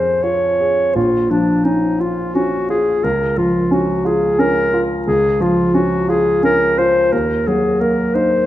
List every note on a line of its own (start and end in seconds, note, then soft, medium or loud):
0.00 0.92 F2 soft
0.00 0.98 F3 soft
0.00 0.98 C#4 soft
0.00 0.45 G#4 soft
0.00 0.24 C5 soft
0.23 0.82 F4 soft
0.23 0.97 C#5 medium
0.60 0.96 G#4 soft
0.95 3.00 A#1 soft
0.95 1.32 F4 soft
1.30 1.86 F3 soft
1.30 1.66 D4 soft
1.65 2.21 C#4 soft
1.65 2.02 D#4 soft
2.00 2.56 F4 soft
2.00 2.36 F4 soft
2.35 2.90 C#4 soft
2.35 2.70 F#4 medium
2.70 3.04 F4 soft
2.70 3.05 G#4 medium
3.04 5.03 C#2 soft
3.04 3.39 A#4 soft
3.38 3.92 F3 soft
3.38 3.74 F4 soft
3.71 4.25 C#4 soft
3.71 4.08 F#4 medium
4.05 4.60 F4 soft
4.05 4.42 G#4 medium
4.39 4.93 C#4 soft
4.39 4.84 A#4 medium
4.73 5.07 F4 soft
5.07 7.08 C#2 soft
5.07 5.43 G#4 medium
5.40 5.95 F3 soft
5.40 5.76 F4 medium
5.74 6.29 C#4 soft
5.74 6.11 F#4 medium
6.09 6.64 F4 soft
6.09 6.44 G#4 medium
6.43 6.98 C#4 soft
6.43 6.80 A#4 medium
6.78 7.12 F4 soft
6.78 7.14 C5 medium
7.12 8.46 D#2 soft
7.12 7.49 A#4 medium
7.47 8.01 F#3 soft
7.47 7.82 G#4 medium
7.81 8.36 A#3 soft
7.81 8.17 A#4 medium
8.15 8.46 D#4 soft
8.15 8.46 C5 medium